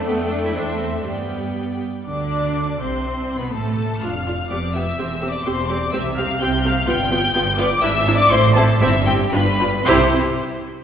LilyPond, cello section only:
\new Staff \with { instrumentName = "Cello section" } { \clef bass \time 2/4 \key c \major \tempo 4 = 123 b8 d'16 e'16 d'8 c'8 | b4. r8 | d4. c8~ | \tuplet 3/2 { c4 b,8 } a,4 |
f,4 f,4 | e,4 e,4 | c4 c4 | g,4 g,4 |
gis,4 a,4 | g,4 g,4 | c8 r4. | }